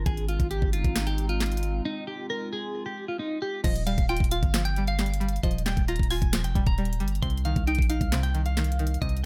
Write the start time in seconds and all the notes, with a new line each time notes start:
0.06 G#1 G#3 C4 D#4 G#4, kick, closed hi-hat
0.17 closed hi-hat
0.28 F4, closed hi-hat
0.40 G#1, kick, closed hi-hat
0.51 G4, closed hi-hat
0.62 G1, kick
0.73 F4, closed hi-hat
0.84 G#1, kick, closed hi-hat
0.96 snare, clap, closed hi-hat
1.07 G4, closed hi-hat
1.18 closed hi-hat
1.29 F4, closed hi-hat
1.40 snare, clap, closed hi-hat
1.46 closed hi-hat
1.52 closed hi-hat
1.57 closed hi-hat
1.63 closed hi-hat
1.85 D#4 F4
2.07 G4
2.30 A#4
2.53 G#4
2.86 G4
3.08 F4
3.19 D#4
3.42 G4
3.64 D#1 F3 D#5, kick, closed hi-hat, crash
3.76 closed hi-hat
3.87 G3 F5, closed hi-hat
3.98 D#1, kick, closed hi-hat
4.09 F4 G5, closed hi-hat
4.17 D#1, kick, closed hi-hat
4.24 closed hi-hat
4.31 F4 F5, closed hi-hat
4.43 G1, kick, closed hi-hat
4.54 F3, snare, clap, closed hi-hat
4.65 G5, closed hi-hat
4.76 G3, closed hi-hat
4.87 F5, closed hi-hat
4.99 G3, snare, clap, closed hi-hat
5.06 closed hi-hat
5.14 closed hi-hat
5.20 G3, closed hi-hat
5.29 closed hi-hat
5.36 closed hi-hat
5.43 D#1 F3 D#5, kick, closed hi-hat
5.51 closed hi-hat
5.58 closed hi-hat
5.66 G3 G5, snare, clap, closed hi-hat
5.77 D#1, kick, closed hi-hat
5.88 F4 A#5, closed hi-hat
5.96 D#1, kick, closed hi-hat
6.03 closed hi-hat
6.10 F4 G#5, open hi-hat
6.22 D#1, kick, closed hi-hat
6.33 F3, snare, clap, closed hi-hat
6.44 F1 G5, closed hi-hat
6.55 D#1 G3, kick, closed hi-hat
6.67 A#5, kick, closed hi-hat
6.78 G3, closed hi-hat
6.85 closed hi-hat
6.93 closed hi-hat
7.00 G1 G3, closed hi-hat
7.08 closed hi-hat
7.15 closed hi-hat
7.22 C2 C3 C6, kick, closed hi-hat
7.30 closed hi-hat
7.38 closed hi-hat
7.45 D#3 F5, closed hi-hat
7.56 C2, kick, closed hi-hat
7.67 D#4 G5, closed hi-hat
7.75 A#1, kick, closed hi-hat
7.82 closed hi-hat
7.90 D#4 F5, closed hi-hat
8.01 C2, kick, closed hi-hat
8.12 C3, snare, clap, closed hi-hat
8.23 G5, closed hi-hat
8.34 D#3, closed hi-hat
8.46 F5, closed hi-hat
8.57 D#3, snare, clap, closed hi-hat
8.64 closed hi-hat
8.72 closed hi-hat
8.79 D#3, closed hi-hat
8.87 closed hi-hat
8.94 closed hi-hat
9.02 C2 C3 D#5, kick, closed hi-hat
9.09 closed hi-hat
9.17 closed hi-hat